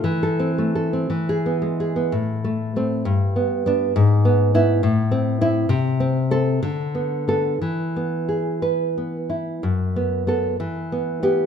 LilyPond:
\new Staff \with { instrumentName = "Nylon-string guitar" } { \time 6/8 \key a \minor \tempo 4. = 63 << { r16 a'8 r4 gis'8 r8. | r4 c'8 r4 d'8 | r4 e'8 r4 e'8 | r4 a'8 r4 a'8 |
r4. b'8. r8. | r4 a'8 r4 g'8 | } \\ { e8 c'16 a16 a'16 c'16 e8 b16 gis16 gis'16 b16 | a,8 a8 a8 g,8 b8 b8 | gis,8 b8 b8 a,8 c'8 c'8 | c8 c'8 c'8 d8 b8 b8 |
e8 b8 gis'4 b8 e'8 | fis,8 b8 b8 e8 b8 b8 | } >> }